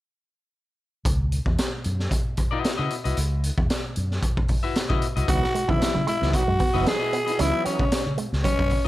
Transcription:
1.05 C#2, kick, closed hi-hat
1.32 closed hi-hat
1.46 E2, kick
1.58 snare, closed hi-hat
1.84 F#2, closed hi-hat
2.00 snare
2.11 kick, closed hi-hat
2.37 kick, closed hi-hat
2.51 E4 F#4 B4 D#5
2.64 snare, closed hi-hat
2.77 C#3 E4 F#4 B4 D#5
2.90 closed hi-hat
3.04 C2 E4 F#4 B4 D#5, closed hi-hat
3.17 C#2, closed hi-hat
3.44 closed hi-hat
3.58 E2, kick
3.70 snare, closed hi-hat
3.96 F#2, closed hi-hat
4.11 snare
4.22 kick, closed hi-hat
4.37 kick
4.48 kick, open hi-hat
4.63 E4 F#4 B4 E5
4.75 snare, closed hi-hat
4.89 C#3 E4 F#4 B4 D#5, kick
5.02 closed hi-hat
5.16 C2 E4 F#4 B4 D#5, closed hi-hat
5.28 C#2 E3 F#3 B3 D#4 F#4, kick, closed hi-hat
5.43 muted clean electric guitar stroke, snare
5.55 G#3, muted fingered electric bass stroke, closed hi-hat
5.68 C#3 E3 F#3 B3 D#4 E4, kick
5.80 muted clean electric guitar stroke, muted fingered electric bass stroke, snare, closed hi-hat
5.94 C#3 F#3
6.07 G#3 E4, closed hi-hat
6.21 C#2 E3 F#3 B3 D#4, snare
6.33 F#4, muted clean electric guitar stroke, kick, closed hi-hat
6.48 F#2 G#3
6.59 B3, kick, open hi-hat
6.74 F#1 E3 F#3 B3 D#4 E4 F#4 B4 D#5
6.86 G#4, snare, closed hi-hat
7.00 E4 F#4 B4 D#5
7.13 B3, closed hi-hat
7.26 B3 D#4 E4 F#4 B4 D#5, closed hi-hat
7.38 C#2 E3 F#3 B3 C#4 D#4 E4, closed hi-hat
7.53 muted clean electric guitar stroke
7.65 B3 C#4, muted fingered electric bass stroke, closed hi-hat
7.79 C#3, kick
7.92 muted fingered electric bass stroke, snare, closed hi-hat
8.07 C#3
8.18 G#3, closed hi-hat
8.33 C#2, snare
8.44 F#3 C#4, kick, closed hi-hat
8.59 F#2, muted clean electric guitar stroke, kick
8.70 kick, open hi-hat
8.85 E5

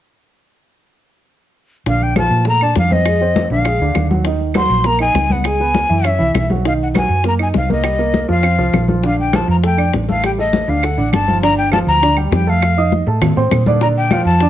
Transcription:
1.86 A#1 D3 D4 F5, high bongo, high conga
2.01 G5, high conga
2.16 F3 F4 A5, high bongo, high conga, claves
2.30 A#2, high conga
2.45 A3 A4 A#5, high bongo, high conga
2.61 D4 D5 A5, high conga, claves
2.76 F2 F5, high bongo, low bongo, high conga
2.91 C4 C5 D#5, high conga
3.06 G#3 G#4, high bongo, high conga, claves
3.21 C4 C5, high bongo, high conga
3.36 high bongo, high conga
3.50 A#1 D3 D4 F5, high bongo, high conga
3.65 G#3 G#4, high bongo, high conga, claves
3.80 D2 D3 D4, high conga
3.95 D#2, high bongo, low bongo, high conga, claves
4.10 F#3 F#4, high bongo, high conga
4.25 D#3 D#4, high bongo, high conga
4.40 high conga
4.54 F#3 F#4 C6, high bongo, high conga, claves
4.69 A#1, high conga
4.84 A#3 A#4 A#5, high bongo, high conga
4.99 D#4 D#5 G#5, high conga, claves
5.14 C#2, high bongo, low bongo, high conga
5.30 B3 B4 F#5, high conga
5.44 G#3 G#4 G#5, high bongo, high conga, claves
5.60 B3 B4, high bongo, high conga
5.74 high bongo, high conga
5.89 F#2 E3 E4, high bongo
6.04 C#4 C#5 E5, high bongo, high conga, claves
6.19 C2 E3 E4, high conga
6.34 B1, high bongo, low bongo, high conga, claves
6.50 F#3 F#4, high bongo, high conga
6.65 D#3 D#4 F5, high bongo, high conga
6.80 F#5, high conga
6.94 F#3 F#4 G#5, high bongo, high conga, claves
7.09 F#2, high conga
7.24 A#3 A#4, high bongo, high conga
7.28 A#5
7.39 D#4 D#5 G#5, high conga, claves
7.54 C2 F5, high bongo, low bongo, high conga
7.70 A#3 A#4 D#5, high conga
7.84 G3 G4, high bongo, high conga, claves
7.99 A#3 A#4, high bongo, high conga
8.14 high bongo, high conga
8.28 F2 F3 F4 F5, high bongo, high conga
8.42 C4 C5, high bongo, high conga, claves
8.58 C2 F3 F4, high conga
8.73 A#1, high bongo, low bongo, high conga, claves
8.88 F3 F4, high bongo, high conga
9.03 D3 D4 F5, high bongo, high conga
9.19 G5, high conga
9.33 F3 F4 A5, high bongo, high conga, claves
9.48 F2 A#5, high conga
9.63 A3 A4 G5, high bongo
9.78 D4 D5, high conga, claves
9.93 A1, high bongo, low bongo, high conga
10.08 A3 A4 F5, high conga
10.23 G3 G4 G5, high bongo, high conga, claves
10.38 A3 A4 D#5, high bongo, high conga
10.53 high bongo, high conga
10.68 D2 D3 D4 F5, high bongo, high conga
10.83 A3 A4 F#5, high bongo, high conga, claves
10.98 A1 D3 D4, high conga
11.13 G1 A5, high bongo, low bongo, high conga, claves
11.28 F3 F4, high bongo, high conga
11.43 D3 D4 D5 A#5, high bongo, high conga
11.58 G5, high conga
11.71 F3 F4 F5 A5, high bongo, high conga, claves
11.87 D2 A#5, high conga
12.02 D3 D4 D5, high bongo, high conga
12.17 G3 G4 G5, high conga, claves
12.31 F2 G5, high bongo, low bongo, high conga
12.47 A3 A4 F5 A5
12.62 high bongo, high conga, claves
12.77 D#4 D#5 D#6, high bongo, high conga
12.92 high bongo, high conga
13.06 A2 A3 A4 A5, high bongo
13.22 high bongo, high conga, low conga, claves
13.36 A2 C4 C5 C6, high bongo, high conga
13.51 A#2, high bongo, low bongo, high conga, claves
13.66 D3 D4 D5, high conga
13.81 D3 D4 D5 A#5, high bongo, high conga
13.96 G5, high conga
14.11 F3 F4 F5, high bongo, high conga, claves
14.25 F2 A5, high conga
14.40 D3 D4 D5, high bongo, high conga

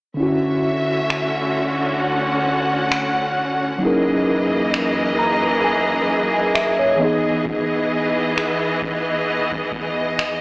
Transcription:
0.14 D2 D3 C#4 F#4
0.18 D3 E4 E5
0.23 F#4
1.10 finger snap
2.00 F#5
2.92 finger snap
3.78 F#2 E3 F#3 A#3 C#4 D#4 G#4 D#5
3.83 E4 G#4 A#4
4.74 finger snap
5.19 A#5
5.64 G#5
6.34 G#5
6.55 E5, finger snap
6.79 C#5
6.96 E2 E3 B3 D#5
7.01 D#4 D#5
7.05 G#4
7.45 kick
8.38 finger snap
8.82 kick
9.52 kick
9.72 kick
10.19 finger snap

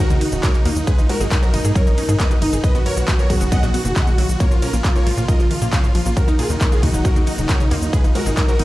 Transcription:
Already playing: D#3 F#3 A#3 F#4
0.10 D#2 C#3 D#4, closed hi-hat, shaker
0.21 D#4, open hi-hat, ride
0.32 D#1 C#3 D#4, closed hi-hat, shaker
0.43 A#3 A#4 C#5, kick, clap, closed hi-hat, shaker
0.54 C#3 D#4, closed hi-hat, shaker
0.65 D#2 A#3 D#4 F4, open hi-hat, ride
0.76 D#2 D#4, closed hi-hat, shaker
0.87 B2 G#3 A#3 D#4 G#4 B4, kick, closed hi-hat, shaker
0.98 G#1 D#4, closed hi-hat, shaker
1.09 G#3 F#4 A#4, open hi-hat, ride
1.20 G#1 D#4 G#4, closed hi-hat, shaker
1.31 D#4 A#4, kick, clap, closed hi-hat, shaker
1.42 F#3 F#4 A#4, closed hi-hat, shaker
1.53 G#1 D#4, open hi-hat, ride
1.64 G#2 D#4 G#4, closed hi-hat, shaker
1.75 F#3 A#4 C#5, kick, closed hi-hat, shaker
1.86 G#1 D#4, closed hi-hat, shaker
1.97 C#4 D#4, open hi-hat, ride
2.08 G#2 D#4 G#4, closed hi-hat, shaker
2.19 B3 B4 D#5, kick, clap, closed hi-hat, shaker
2.30 F#3 D#4, closed hi-hat, shaker
2.41 G#1 D#4, open hi-hat, ride
2.52 G#1 D#4 G#4, closed hi-hat, shaker
2.63 B2 D#3 F#3 B3 F#4 B4 D#5, kick, closed hi-hat, shaker
2.74 B1 B3 F#4, closed hi-hat, shaker
2.86 F#2 A#4 C#5, open hi-hat, ride
2.97 B1 A#2 F#4, closed hi-hat, shaker
3.08 F#3 F#4, kick, clap, closed hi-hat, shaker
3.19 A#2 A#4 C#5, closed hi-hat, shaker
3.30 B1 F#2 F#4 G#4, kick, open hi-hat, ride
3.41 F#1 B3 F#4, closed hi-hat, shaker
3.52 B3 D#5 F#5, kick, closed hi-hat, shaker
3.63 B1 A#2 F#4, closed hi-hat, shaker
3.74 B3 F#4, open hi-hat, ride
3.85 F#1 A#2 F#4, closed hi-hat, shaker
3.96 F#3 D#5 F#5, kick, clap, closed hi-hat, shaker
4.07 A#2 F#4, closed hi-hat, shaker
4.18 B1 F#3 F4 F#4, open hi-hat, ride
4.29 B1 F#4, closed hi-hat, shaker
4.40 C#3 F3 A#3 F4 A#4 C#5, kick, closed hi-hat, shaker
4.51 A#1 F3 F4, closed hi-hat, shaker
4.62 A#2 C#4 A#4, open hi-hat, ride
4.73 A#1 A#3 F4, closed hi-hat, shaker
4.84 F3 F4, kick, clap, closed hi-hat, shaker
4.95 G#2 A#4 C#5, closed hi-hat, shaker
5.06 A#1 F3 F4, open hi-hat, ride
5.17 A#2 A#3 F4, closed hi-hat, shaker
5.28 G#2 A#4 D#5, kick, closed hi-hat, shaker
5.39 A#1 F3 F4, closed hi-hat, shaker
5.51 D#3 F4, open hi-hat, ride
5.62 A#2 A#3 F4, closed hi-hat, shaker
5.73 C#3 C#5 F5, kick, clap, closed hi-hat, shaker
5.83 G#2 F4, closed hi-hat, shaker
5.94 A#1 F3 F4, open hi-hat, ride
6.05 A#1 A#3 F4, closed hi-hat, shaker
6.16 D#3 F#3 F#4 A#4, kick, closed hi-hat, shaker
6.28 D#2 D#4, closed hi-hat, shaker
6.39 A#2 F4 G#4, open hi-hat, ride
6.50 D#2 C#3 D#4, closed hi-hat, shaker
6.61 A#3 D#4, kick, clap, closed hi-hat, shaker
6.72 C#3 F4 G#4, closed hi-hat, shaker
6.83 D#2 A#2 D#4 F#4, kick, open hi-hat, ride
6.94 D#1 D#4, closed hi-hat, shaker
7.05 D#4 F#4 A#4, kick, closed hi-hat, shaker
7.16 D#2 C#3 D#4, closed hi-hat, shaker
7.27 D#4, open hi-hat, ride
7.38 D#1 C#3 D#4, closed hi-hat, shaker
7.49 A#3 A#4 C#5, kick, clap, closed hi-hat, shaker
7.60 C#3 D#4, closed hi-hat, shaker
7.71 D#2 A#3 D#4 F4, open hi-hat, ride
7.82 D#2 D#4, closed hi-hat, shaker
7.93 B2 G#3 A#3 D#4 G#4 B4, kick, closed hi-hat, shaker
8.04 G#1 D#4, closed hi-hat, shaker
8.15 G#3 F#4 A#4, open hi-hat, ride
8.26 G#1 D#4 G#4, closed hi-hat, shaker
8.37 D#4 A#4, kick, clap, closed hi-hat, shaker
8.48 F#3 F#4 A#4, closed hi-hat, shaker
8.59 G#1 D#4, open hi-hat, ride

